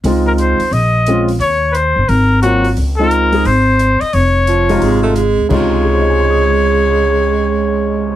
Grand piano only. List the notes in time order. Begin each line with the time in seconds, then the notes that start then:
0.05 G#3 C4 D#4 F4
1.08 G#3 C4 C#4 F4
2.43 F#3 A#3 C4 F4
2.99 G#3 C4 D#4 F4
3.32 G#3 C4 D#4 G#4
4.69 C3 G#3 D#4 F4
5.49 C3 C#3 G#3 D#4 F4
5.85 G#4
5.92 C5
6.01 D#5
6.10 G#5
6.20 C6
6.30 D#6
6.42 G#6